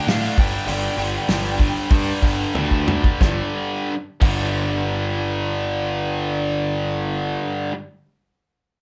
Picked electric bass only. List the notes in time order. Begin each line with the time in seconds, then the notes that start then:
0.07 A2
0.38 G1
0.67 G1
0.97 G1
1.28 G1
1.91 G2
2.23 G1
2.55 D2
3.21 G1
4.22 G1